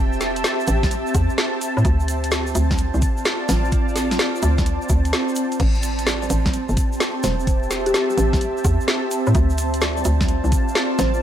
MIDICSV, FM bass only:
0, 0, Header, 1, 2, 480
1, 0, Start_track
1, 0, Key_signature, 0, "minor"
1, 0, Tempo, 468750
1, 1892, Time_signature, 4, 2, 24, 8
1, 11491, End_track
2, 0, Start_track
2, 0, Title_t, "FM bass"
2, 0, Program_c, 0, 39
2, 0, Note_on_c, 0, 28, 93
2, 436, Note_off_c, 0, 28, 0
2, 692, Note_on_c, 0, 33, 90
2, 1059, Note_off_c, 0, 33, 0
2, 1172, Note_on_c, 0, 40, 94
2, 1311, Note_off_c, 0, 40, 0
2, 1812, Note_on_c, 0, 45, 82
2, 1882, Note_off_c, 0, 45, 0
2, 1892, Note_on_c, 0, 38, 105
2, 2596, Note_off_c, 0, 38, 0
2, 2613, Note_on_c, 0, 38, 91
2, 2980, Note_off_c, 0, 38, 0
2, 3012, Note_on_c, 0, 36, 85
2, 3082, Note_off_c, 0, 36, 0
2, 3573, Note_on_c, 0, 33, 92
2, 4276, Note_off_c, 0, 33, 0
2, 4533, Note_on_c, 0, 38, 90
2, 4899, Note_off_c, 0, 38, 0
2, 5013, Note_on_c, 0, 38, 84
2, 5253, Note_off_c, 0, 38, 0
2, 5733, Note_on_c, 0, 33, 108
2, 6436, Note_off_c, 0, 33, 0
2, 6452, Note_on_c, 0, 33, 88
2, 6819, Note_off_c, 0, 33, 0
2, 6852, Note_on_c, 0, 31, 84
2, 6922, Note_off_c, 0, 31, 0
2, 7412, Note_on_c, 0, 28, 92
2, 8116, Note_off_c, 0, 28, 0
2, 8371, Note_on_c, 0, 33, 93
2, 8739, Note_off_c, 0, 33, 0
2, 8852, Note_on_c, 0, 40, 96
2, 8992, Note_off_c, 0, 40, 0
2, 9492, Note_on_c, 0, 45, 81
2, 9562, Note_off_c, 0, 45, 0
2, 9572, Note_on_c, 0, 38, 108
2, 10276, Note_off_c, 0, 38, 0
2, 10292, Note_on_c, 0, 38, 90
2, 10659, Note_off_c, 0, 38, 0
2, 10691, Note_on_c, 0, 36, 82
2, 10762, Note_off_c, 0, 36, 0
2, 11252, Note_on_c, 0, 33, 93
2, 11491, Note_off_c, 0, 33, 0
2, 11491, End_track
0, 0, End_of_file